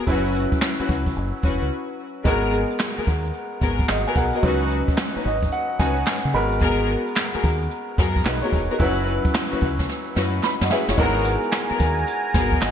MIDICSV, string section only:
0, 0, Header, 1, 2, 480
1, 0, Start_track
1, 0, Key_signature, 5, "minor"
1, 0, Tempo, 545455
1, 62, Time_signature, 4, 2, 24, 8
1, 11186, End_track
2, 0, Start_track
2, 0, Title_t, "String section"
2, 0, Program_c, 0, 48
2, 62, Note_on_c, 0, 61, 94
2, 64, Note_on_c, 0, 64, 85
2, 65, Note_on_c, 0, 66, 82
2, 68, Note_on_c, 0, 71, 94
2, 289, Note_off_c, 0, 61, 0
2, 290, Note_off_c, 0, 64, 0
2, 290, Note_off_c, 0, 66, 0
2, 291, Note_off_c, 0, 71, 0
2, 697, Note_on_c, 0, 61, 68
2, 698, Note_on_c, 0, 64, 65
2, 699, Note_on_c, 0, 66, 65
2, 701, Note_on_c, 0, 71, 70
2, 777, Note_off_c, 0, 61, 0
2, 777, Note_off_c, 0, 64, 0
2, 778, Note_off_c, 0, 66, 0
2, 779, Note_off_c, 0, 71, 0
2, 1259, Note_on_c, 0, 61, 75
2, 1260, Note_on_c, 0, 64, 66
2, 1262, Note_on_c, 0, 66, 68
2, 1264, Note_on_c, 0, 71, 83
2, 1411, Note_off_c, 0, 61, 0
2, 1411, Note_off_c, 0, 64, 0
2, 1412, Note_off_c, 0, 66, 0
2, 1413, Note_off_c, 0, 71, 0
2, 1977, Note_on_c, 0, 59, 85
2, 1980, Note_on_c, 0, 66, 82
2, 1982, Note_on_c, 0, 68, 88
2, 1983, Note_on_c, 0, 70, 99
2, 2206, Note_off_c, 0, 59, 0
2, 2207, Note_off_c, 0, 66, 0
2, 2208, Note_off_c, 0, 68, 0
2, 2209, Note_off_c, 0, 70, 0
2, 2614, Note_on_c, 0, 59, 71
2, 2617, Note_on_c, 0, 66, 67
2, 2618, Note_on_c, 0, 68, 63
2, 2619, Note_on_c, 0, 70, 76
2, 2695, Note_off_c, 0, 59, 0
2, 2697, Note_off_c, 0, 66, 0
2, 2697, Note_off_c, 0, 68, 0
2, 2698, Note_off_c, 0, 70, 0
2, 3177, Note_on_c, 0, 59, 77
2, 3180, Note_on_c, 0, 66, 73
2, 3182, Note_on_c, 0, 68, 76
2, 3183, Note_on_c, 0, 70, 88
2, 3329, Note_off_c, 0, 59, 0
2, 3331, Note_off_c, 0, 66, 0
2, 3332, Note_off_c, 0, 68, 0
2, 3332, Note_off_c, 0, 70, 0
2, 3578, Note_on_c, 0, 59, 69
2, 3579, Note_on_c, 0, 66, 72
2, 3581, Note_on_c, 0, 68, 69
2, 3582, Note_on_c, 0, 70, 84
2, 3657, Note_off_c, 0, 59, 0
2, 3658, Note_off_c, 0, 66, 0
2, 3659, Note_off_c, 0, 68, 0
2, 3659, Note_off_c, 0, 70, 0
2, 3816, Note_on_c, 0, 59, 70
2, 3817, Note_on_c, 0, 66, 68
2, 3820, Note_on_c, 0, 68, 70
2, 3820, Note_on_c, 0, 70, 74
2, 3887, Note_off_c, 0, 66, 0
2, 3896, Note_on_c, 0, 61, 88
2, 3897, Note_off_c, 0, 59, 0
2, 3898, Note_off_c, 0, 68, 0
2, 3898, Note_on_c, 0, 63, 84
2, 3898, Note_on_c, 0, 66, 90
2, 3899, Note_off_c, 0, 70, 0
2, 3902, Note_on_c, 0, 71, 98
2, 4125, Note_off_c, 0, 61, 0
2, 4126, Note_off_c, 0, 63, 0
2, 4126, Note_off_c, 0, 66, 0
2, 4128, Note_off_c, 0, 71, 0
2, 4534, Note_on_c, 0, 61, 69
2, 4536, Note_on_c, 0, 63, 62
2, 4537, Note_on_c, 0, 66, 64
2, 4539, Note_on_c, 0, 71, 82
2, 4615, Note_off_c, 0, 61, 0
2, 4617, Note_off_c, 0, 63, 0
2, 4617, Note_off_c, 0, 66, 0
2, 4618, Note_off_c, 0, 71, 0
2, 5095, Note_on_c, 0, 61, 84
2, 5097, Note_on_c, 0, 63, 71
2, 5099, Note_on_c, 0, 66, 74
2, 5099, Note_on_c, 0, 71, 81
2, 5248, Note_off_c, 0, 61, 0
2, 5249, Note_off_c, 0, 63, 0
2, 5250, Note_off_c, 0, 66, 0
2, 5251, Note_off_c, 0, 71, 0
2, 5817, Note_on_c, 0, 59, 89
2, 5818, Note_on_c, 0, 66, 86
2, 5821, Note_on_c, 0, 68, 89
2, 5822, Note_on_c, 0, 70, 104
2, 6046, Note_off_c, 0, 59, 0
2, 6046, Note_off_c, 0, 66, 0
2, 6048, Note_off_c, 0, 68, 0
2, 6049, Note_off_c, 0, 70, 0
2, 6452, Note_on_c, 0, 59, 66
2, 6454, Note_on_c, 0, 66, 64
2, 6455, Note_on_c, 0, 68, 67
2, 6458, Note_on_c, 0, 70, 80
2, 6535, Note_off_c, 0, 59, 0
2, 6535, Note_off_c, 0, 66, 0
2, 6536, Note_off_c, 0, 68, 0
2, 6537, Note_off_c, 0, 70, 0
2, 7020, Note_on_c, 0, 59, 75
2, 7021, Note_on_c, 0, 66, 74
2, 7024, Note_on_c, 0, 68, 69
2, 7024, Note_on_c, 0, 70, 92
2, 7171, Note_off_c, 0, 59, 0
2, 7171, Note_off_c, 0, 66, 0
2, 7173, Note_off_c, 0, 68, 0
2, 7173, Note_off_c, 0, 70, 0
2, 7417, Note_on_c, 0, 59, 75
2, 7419, Note_on_c, 0, 66, 75
2, 7421, Note_on_c, 0, 68, 68
2, 7423, Note_on_c, 0, 70, 81
2, 7497, Note_off_c, 0, 59, 0
2, 7498, Note_off_c, 0, 66, 0
2, 7499, Note_off_c, 0, 68, 0
2, 7500, Note_off_c, 0, 70, 0
2, 7657, Note_on_c, 0, 59, 71
2, 7658, Note_on_c, 0, 66, 71
2, 7659, Note_on_c, 0, 68, 70
2, 7662, Note_on_c, 0, 70, 87
2, 7727, Note_off_c, 0, 66, 0
2, 7734, Note_on_c, 0, 61, 92
2, 7737, Note_off_c, 0, 59, 0
2, 7737, Note_on_c, 0, 64, 85
2, 7738, Note_off_c, 0, 68, 0
2, 7738, Note_on_c, 0, 66, 88
2, 7740, Note_off_c, 0, 70, 0
2, 7741, Note_on_c, 0, 71, 102
2, 7965, Note_off_c, 0, 61, 0
2, 7966, Note_off_c, 0, 64, 0
2, 7967, Note_off_c, 0, 66, 0
2, 7968, Note_off_c, 0, 71, 0
2, 8373, Note_on_c, 0, 61, 75
2, 8375, Note_on_c, 0, 64, 66
2, 8377, Note_on_c, 0, 66, 69
2, 8379, Note_on_c, 0, 71, 87
2, 8455, Note_off_c, 0, 61, 0
2, 8456, Note_off_c, 0, 64, 0
2, 8457, Note_off_c, 0, 66, 0
2, 8458, Note_off_c, 0, 71, 0
2, 8937, Note_on_c, 0, 61, 83
2, 8938, Note_on_c, 0, 64, 72
2, 8941, Note_on_c, 0, 66, 71
2, 8942, Note_on_c, 0, 71, 91
2, 9089, Note_off_c, 0, 61, 0
2, 9090, Note_off_c, 0, 64, 0
2, 9091, Note_off_c, 0, 66, 0
2, 9092, Note_off_c, 0, 71, 0
2, 9417, Note_on_c, 0, 61, 72
2, 9418, Note_on_c, 0, 64, 73
2, 9420, Note_on_c, 0, 66, 72
2, 9423, Note_on_c, 0, 71, 89
2, 9569, Note_off_c, 0, 61, 0
2, 9570, Note_off_c, 0, 64, 0
2, 9571, Note_off_c, 0, 66, 0
2, 9572, Note_off_c, 0, 71, 0
2, 9657, Note_on_c, 0, 59, 93
2, 9659, Note_on_c, 0, 66, 85
2, 9661, Note_on_c, 0, 68, 87
2, 9662, Note_on_c, 0, 70, 96
2, 9886, Note_off_c, 0, 59, 0
2, 9887, Note_off_c, 0, 66, 0
2, 9888, Note_off_c, 0, 68, 0
2, 9889, Note_off_c, 0, 70, 0
2, 10294, Note_on_c, 0, 59, 69
2, 10296, Note_on_c, 0, 66, 67
2, 10298, Note_on_c, 0, 68, 67
2, 10299, Note_on_c, 0, 70, 81
2, 10375, Note_off_c, 0, 59, 0
2, 10376, Note_off_c, 0, 66, 0
2, 10378, Note_off_c, 0, 68, 0
2, 10378, Note_off_c, 0, 70, 0
2, 10858, Note_on_c, 0, 59, 85
2, 10859, Note_on_c, 0, 66, 70
2, 10862, Note_on_c, 0, 68, 74
2, 10863, Note_on_c, 0, 70, 87
2, 11010, Note_off_c, 0, 59, 0
2, 11010, Note_off_c, 0, 66, 0
2, 11012, Note_off_c, 0, 68, 0
2, 11013, Note_off_c, 0, 70, 0
2, 11186, End_track
0, 0, End_of_file